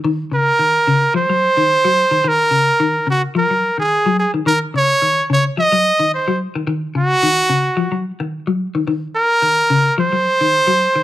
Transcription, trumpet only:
X:1
M:4/4
L:1/16
Q:"Swing 16ths" 1/4=109
K:Ebdor
V:1 name="Trumpet"
z2 B6 c8 | B6 G2 B3 A3 A2 | B2 d4 d2 e4 c2 z2 | z2 G8 z6 |
z2 B6 c8 |]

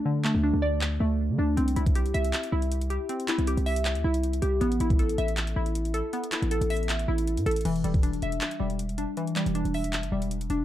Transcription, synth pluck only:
X:1
M:4/4
L:1/8
Q:1/4=158
K:Em
V:1 name="Synth pluck"
[D,A,Dd] A, D d2 A,2 D | C E G e2 E2 G | C E G e2 E2 G | B, E A e2 E2 A |
B, E A e2 E2 A | E, G, D e2 G,2 D | E, G, D e2 G,2 D |]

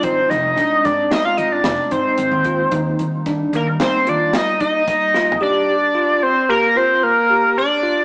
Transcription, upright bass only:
X:1
M:5/4
L:1/16
Q:1/4=112
K:Fdor
V:1 name="Upright bass" clef=bass
A,,,2 F,,,2 z2 A,,2 z2 A,,2 F,,, z A,, z A,,, E,,3 | E,,2 E,4 E,2 z2 E,2 z8 | z16 z4 |]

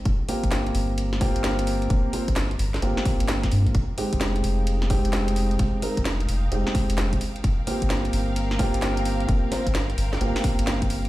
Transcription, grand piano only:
X:1
M:4/4
L:1/16
Q:"Swing 16ths" 1/4=130
K:Cphr
V:1 name="Grand piano"
z2 [B,CFG]8 [B,CFG]6- | [B,CFG]2 [B,CFc] z4 z [B,CFG]8 | z2 [A,CEG]8 [A,CEG]6- | [A,CEG]2 [A,CEB] z4 z [A,CEG]6 z2 |
z2 [B,CFG]8 [B,CFG]6- | [B,CFG]2 [B,CFc] z4 z [B,CFG]8 |]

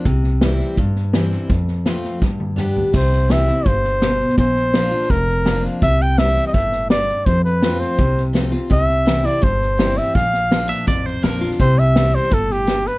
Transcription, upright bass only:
X:1
M:4/4
L:1/8
Q:1/4=166
K:C
V:1 name="Upright bass" clef=bass
C,,4 G,,4 | F,,4 G,,4 | C,,4 G,,,4 | _B,,,4 F,,,4 |
C,,4 G,,,4 | F,,4 C,,4 | C,,4 G,,,4 | _B,,,4 A,,,2 B,,,2 |
C,,4 G,,,4 |]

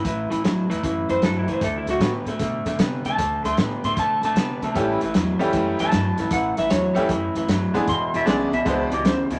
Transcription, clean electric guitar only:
X:1
M:4/4
L:1/8
Q:"Swing" 1/4=153
K:Amix
V:1 name="Clean electric guitar" clef=bass
[A,,E,] [A,,E,] [A,,F,] [A,,E,] [A,,E,] [A,,E,] [A,,F,] [A,,E,] | [D,A,] [D,A,] [D,B,] [D,A,] [D,A,] [D,A,] [D,B,] [D,A,] | [D,A,] [D,A,] [D,B,] [D,A,] [D,A,] [D,A,] [D,B,] [D,A,] | [A,,E,] [A,,E,] [A,,F,] [A,,E,] [A,,E,] [A,,E,] [A,,F,] [A,,E,] |
[A,,E,] [A,,E,] [A,,F,] [A,,E,] [A,,E,] [A,,E,] [A,,F,] [A,,E,] | [E,,B,,] [E,,B,,] [E,,C,] [E,,B,,] [E,,B,,] [E,,B,,] [E,,C,] [E,,B,,] |]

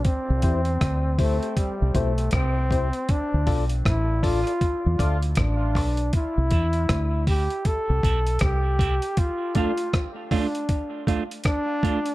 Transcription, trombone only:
X:1
M:4/4
L:1/8
Q:"Swing 16ths" 1/4=79
K:C
V:1 name="Trombone"
C3 A, G, A, C2 | D z E F2 z D2 | E3 G A2 G2 | F F z D2 z D2 |]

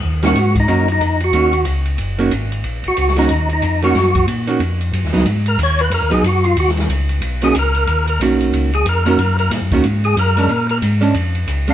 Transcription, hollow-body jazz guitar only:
X:1
M:4/4
L:1/8
Q:"Swing" 1/4=184
K:Ebm
V:1 name="Hollow-body jazz guitar"
z [E,B,DG] z2 [E,B,DG] z3 | [E,B,DG] z4 [E,B,DG] z2 | z3 [E,B,DG] z3 [E,B,DG] | z3 [E,B,DG] z3 [G,CE] |
z4 z [G,CE] z2 | z4 z [E,B,DG] z2 | z2 [E,B,DG]3 z2 [E,B,DG] | z3 [E,B,DG] z3 [A,D=D] |
z3 [A,^C=D] z3 [A,CD] |]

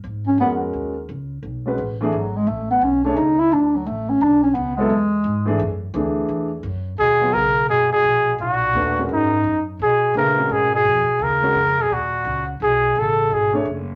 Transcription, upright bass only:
X:1
M:4/4
L:1/8
Q:"Swing" 1/4=172
K:Blyd
V:1 name="Upright bass" clef=bass
G,,2 E,,2 D,,2 C,,2 | B,,,2 =A,,,2 G,,,2 A,,,2 | B,,,2 C,,2 =D,,2 =A,,,2 | B,,,2 C,,2 =E,,2 G,,2 |
F,,2 =D,,2 =E,,2 F,,2 | D,,2 B,,,2 F,,,2 A,,,2 | B,,,2 D,,2 G,,2 F,,2 | B,,2 A,,2 G,,2 E,, z |
D,,2 E,,2 D,,2 C,,2 | B,,,2 =A,,,2 G,,,2 F,,,2 |]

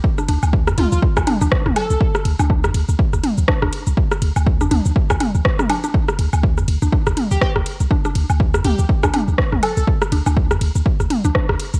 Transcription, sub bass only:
X:1
M:4/4
L:1/16
Q:"Swing 16ths" 1/4=122
K:Dm
V:1 name="Sub bass" clef=bass
z2 D,, D,,2 F,, D,, D,, z D,, z D,, z D,, z C,, | z2 D,, D,,2 F,, D,, D,, z D,, z D,, z D,, z C,, | z2 D,, D,,2 F,, D,, D,, z D,, z D,, z4 | z2 D,, D,,2 F,, D,, D,, z D,, z D,, z D,, z C,, |
z2 D,, D,,2 F,, D,, D,, z D,, z D,, z D,, z C,, | z2 D,, D,,2 F,, D,, D,, z D,, z D,, z D,, z C,, |]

